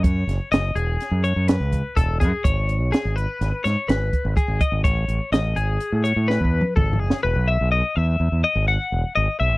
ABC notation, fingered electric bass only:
X:1
M:5/4
L:1/16
Q:1/4=125
K:E
V:1 name="Fingered electric bass" clef=bass
F,,2 F,,, z F,,,2 E,,,2 z F,,2 F,,2 C,,2 z E,,,2 F,, z | G,,,3 B,,, z G,,,2 z G,,, z G,, z G,,,2 z G,,, z G,,, z G,,, | A,,,2 A,,, z A,,,2 G,,,2 z A,,2 A,,2 E,,2 z G,,,2 F,,, z | E,,, B,,,2 B,,,2 z E,,2 E,, E,, z G,,,2 z E,,, z G,,, z B,,, G,,, |]